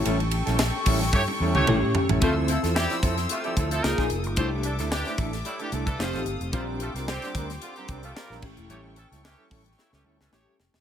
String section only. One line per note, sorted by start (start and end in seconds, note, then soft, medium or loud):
0.00 2.19 A4 medium
0.00 2.19 G5 medium
0.00 2.19 C#6 medium
2.22 3.82 C5 medium
2.22 3.82 E6 medium
3.83 4.37 A#4 medium
3.83 4.37 D#6 medium
4.36 6.50 A4 medium
4.36 5.97 E5 medium
4.36 5.97 D6 medium
5.99 6.53 F5 medium
5.99 6.53 D#6 medium
6.54 8.41 C5 medium
6.54 10.28 G5 medium
6.54 8.41 D6 medium
8.42 10.29 A4 medium
8.42 10.81 C#6 medium
10.31 10.81 A4 medium
10.31 10.81 G5 medium